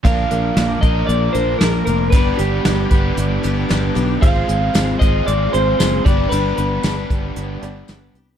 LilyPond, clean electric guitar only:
\new Staff \with { instrumentName = "Clean electric guitar" } { \time 4/4 \key g \phrygian \tempo 4 = 115 f''4. ees''8 d''8 c''8 bes'8 bes'8 | b'8 g'4. r2 | f''4. ees''8 d''8 c''8 c''8 d''8 | b'8 b'4. r2 | }